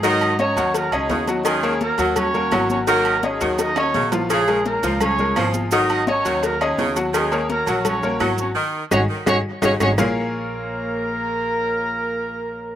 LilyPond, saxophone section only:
\new Staff \with { instrumentName = "Saxophone section" } { \clef bass \time 4/4 \key bes \minor \tempo 4 = 169 ees4. ees4. des4 | ees4. ges4. ges4 | ees4. ees4. des4 | des4. f4. f4 |
ees4. ees4. des4 | ees4. ges4. ges4 | ees4. ees4. des4 | bes,8 r2. r8 |
r1 | }